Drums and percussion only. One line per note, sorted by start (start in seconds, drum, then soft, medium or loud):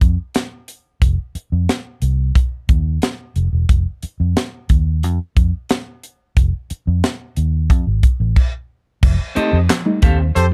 0.01 kick medium
0.01 closed hi-hat medium
0.35 snare medium
0.35 closed hi-hat medium
0.68 closed hi-hat medium
1.02 kick loud
1.02 closed hi-hat medium
1.35 closed hi-hat medium
1.69 snare medium
1.69 closed hi-hat medium
2.02 closed hi-hat medium
2.35 kick loud
2.35 closed hi-hat medium
2.69 kick medium
2.69 closed hi-hat medium
3.02 snare loud
3.02 closed hi-hat medium
3.36 closed hi-hat medium
3.69 kick medium
3.69 closed hi-hat medium
4.02 closed hi-hat medium
4.37 snare loud
4.37 closed hi-hat medium
4.69 kick medium
4.69 closed hi-hat medium
5.03 closed hi-hat medium
5.37 kick medium
5.37 closed hi-hat medium
5.69 snare loud
5.69 closed hi-hat medium
6.03 closed hi-hat medium
6.37 kick loud
6.37 closed hi-hat medium
6.70 closed hi-hat medium
7.04 snare loud
7.04 closed hi-hat medium
7.37 closed hi-hat medium
7.70 kick loud
7.70 closed hi-hat medium
8.03 kick medium
8.03 closed hi-hat medium
8.36 kick loud
8.36 crash medium
9.03 kick loud
9.03 crash loud
9.36 closed hi-hat medium
9.70 snare loud
9.70 clap medium
9.70 closed hi-hat medium
10.02 kick medium
10.02 closed hi-hat medium
10.36 closed hi-hat medium